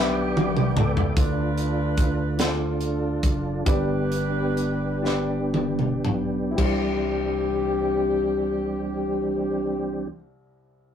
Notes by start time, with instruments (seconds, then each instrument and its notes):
Already playing: fingered electric bass B1, grand piano G2 B3 D4 G4 D5, saxophone section B4, tonewheel organ B4 D5 G5 D6
0.00 saxophone section B3 D4 G4, grand piano B4 E5
0.37 high tom
0.57 mid tom
0.77 fingered electric bass C#2, saxophone section A4, mid tom
0.97 floor tom
1.16 fingered electric bass D2, grand piano D3 D4 F4 A4 D5, tonewheel organ D4 F4 A4, saxophone section B4, kick, closed hi-hat
1.20 saxophone section D4 F4
1.58 closed hi-hat
1.97 kick, closed hi-hat
2.37 grand piano D4 F4 A4 C5, saxophone section D4 F4, snare, closed hi-hat
2.41 saxophone section A4
2.47 grand piano D5
2.81 closed hi-hat
3.23 fingered electric bass F#1, kick, closed hi-hat
3.65 fingered electric bass G1, grand piano G2 D4 G4 B4 D5, tonewheel organ B3 G4, kick, closed hi-hat
3.70 saxophone section D4 G4 B4
4.12 closed hi-hat
4.57 closed hi-hat
5.02 grand piano D4 G4 B4 D5, snare
5.54 high tom
5.79 mid tom
6.05 fingered electric bass B1, mid tom
6.51 grand piano E4
6.56 fingered electric bass C2, grand piano C2 G4, tonewheel organ E3 G3 C4 D4 G4, kick, crash
6.60 saxophone section G4, grand piano C5
6.65 grand piano D5